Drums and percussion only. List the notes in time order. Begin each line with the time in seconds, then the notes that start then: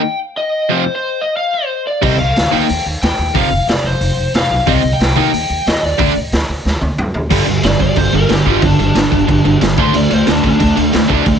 2.03 kick, crash
2.36 snare, open hi-hat
2.69 open hi-hat
3.02 snare, open hi-hat
3.35 kick, open hi-hat
3.68 snare, open hi-hat
4.01 open hi-hat
4.34 snare, open hi-hat
4.67 kick, open hi-hat
5.00 snare, open hi-hat
5.34 open hi-hat
5.66 snare, open hi-hat
5.99 kick, open hi-hat
6.32 snare, open hi-hat
6.66 snare
6.81 high tom
6.98 mid tom
7.14 floor tom
7.30 kick, crash
7.47 crash
7.63 snare, crash
7.80 kick, crash
7.96 kick, crash
8.12 crash
8.29 snare, crash
8.46 kick, crash
8.62 kick, crash
8.79 crash
8.95 snare, crash
9.12 kick, crash
9.28 kick, crash
9.45 crash
9.61 snare, crash
9.78 kick, crash
9.94 crash
10.11 crash
10.27 snare, crash
10.44 kick, crash
10.60 kick, crash
10.77 crash
10.93 snare, crash
11.10 kick, crash
11.26 kick, crash